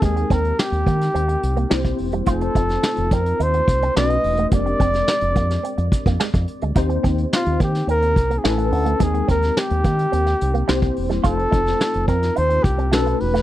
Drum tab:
HH |xxxx-xxxxxxx-xox|xxxx-xxxxxxx-xox|xxxx-xxxxxxx-xxx|xxxx-xxxxxxx-xox|
SD |----o--o----o---|---oo-------o---|---oo--o----o---|----o--o----o---|
BD |o-o---o------o--|o-o---o---o-----|o-o---o---oo-o--|o-o---o---o-----|

HH |xxxx-xxxxxxx-xox|xxxx-xxxxxxx-xox|
SD |---oo----o--o--o|---oo--o----o--o|
BD |o-o---o------o--|o-o---o---o-----|